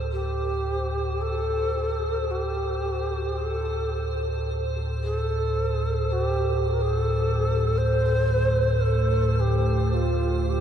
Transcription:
Already playing: synth drone D2 A2, ambient pad C5
0.13 shakuhachi G4
1.22 shakuhachi A4
2.31 shakuhachi G4
3.38 shakuhachi A4
5.04 shakuhachi A4
6.12 shakuhachi F#4
6.23 shakuhachi G4
6.68 shakuhachi A4
6.73 shakuhachi A#4
6.82 shakuhachi G#4
6.96 shakuhachi A4
7.78 shakuhachi C5
8.85 shakuhachi A4
9.40 shakuhachi G4
9.94 shakuhachi F4
10.49 shakuhachi G4

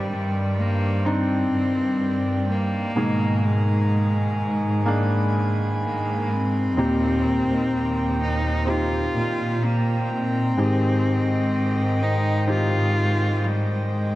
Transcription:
Already playing: felt piano G2 G3 C4 D4 D#4, harmonium D#3 C5 D5 G5, cello G3
0.09 cello section G2
0.60 cello A#3
1.05 felt piano C4 D4 D#4, cello C4
1.52 cello section G2
2.49 cello A#3
2.95 cello section G#2, felt piano G#2 B2 D#3 A#3 G#4, harmonium G#4 G#5 A#5
3.46 cello G#3
4.86 felt piano G#3 A#3 D4, harmonium B5
5.84 cello A#3
6.32 cello C4
6.77 cello section D#2, felt piano A#2 C4 D#4 G4, harmonium C5 G5 A#5
7.47 cello section D#2
7.71 cello section D#2
8.22 cello D#4
8.65 felt piano C4 D#4 G4, cello F4
9.14 cello section A#2
9.64 cello A#3
10.11 cello C4
10.57 cello section G#2, felt piano G#2 D#3 G#3 C4 G4, harmonium D#3 D#5
12.02 cello D#4
12.47 felt piano D#3 C4 G4, cello F4
13.44 cello G3
13.91 cello G#3

